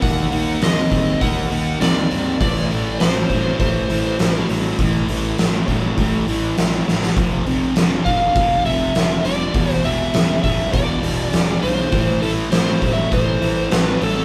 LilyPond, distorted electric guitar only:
\new Staff \with { instrumentName = "Distorted electric guitar" } { \clef bass \time 4/4 \key a \minor \tempo 4 = 101 <dis ais>8 <dis ais>8 <dis bis>8 <dis bis>8 <dis ais>8 <dis ais>8 <dis bis>8 <dis bis>8 | <a, e>8 <a, e>8 <a, fis>8 <a, fis>8 <a, e>8 <a, e>8 <a, fis>8 <a, fis>8 | <a, e>8 <a, e>8 <a, fis>8 <a, fis>8 <a, e>8 <a, e>8 <a, fis>8 <a, fis>8 | <f, c>8 <f, c>8 <f, d>8 <f, d>8 <f, c>8 <f, c>8 <f, d>8 <f, d>8 |
<e, b,>8 <e, b,>8 <e, cis>8 <e, cis>8 <e, b,>8 <e, b,>8 <e, cis>8 <e, cis>8 | <a, e>8 <a, e>8 <a, fis>8 <a, fis>8 <a, e>8 <a, e>8 <a, fis>8 <a, fis>8 | }